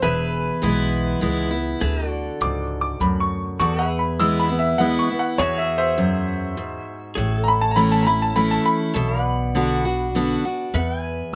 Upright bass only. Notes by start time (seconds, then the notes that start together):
0.02 E1
0.63 B1
1.22 C#2
1.81 D2
2.41 C#2
3.00 D2
3.60 E2
5.38 E2
7.17 A1
8.95 B1
10.74 E2